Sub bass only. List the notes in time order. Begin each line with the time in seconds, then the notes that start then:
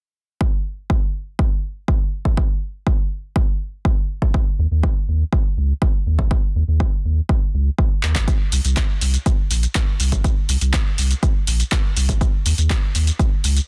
4.59 D#2
4.71 D#2
5.08 D#2
5.57 C#2
6.06 D#2
6.55 D#2
6.68 D#2
7.05 D#2
7.54 C#2
8.03 D#2
8.52 C2
8.65 C2
9.01 C2
9.51 A#1
10.00 C2
10.49 C2
10.61 C2
10.98 C2
11.47 A#1
11.96 C2
12.46 D#2
12.58 D#2
12.95 D#2
13.44 C#2